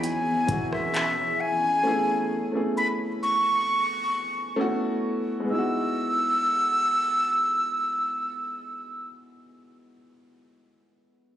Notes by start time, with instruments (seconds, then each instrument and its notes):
Already playing: ambient pad E3 G#4, grand piano F#3 B3 D#4 E4 F#4 G#4
0.04 flute G#5, closed hi-hat
0.47 808-style bass E1, grand piano F#3 B3 E4, kick, closed hi-hat
0.52 grand piano F#4
0.72 flute E5, cross-stick
0.94 clap, closed hi-hat
1.41 flute G#5
1.83 grand piano A3 B3 C#4 E4
1.88 grand piano G#4
2.52 grand piano A3 B3 C#4 E4
2.56 grand piano G#4
2.77 flute B5
3.23 flute C#6
4.56 grand piano A3 B3 C#4 E4
4.61 grand piano F#4
5.40 grand piano G#3
5.45 grand piano B3
5.49 grand piano D#4, flute E6
5.54 grand piano E4
5.58 grand piano F#4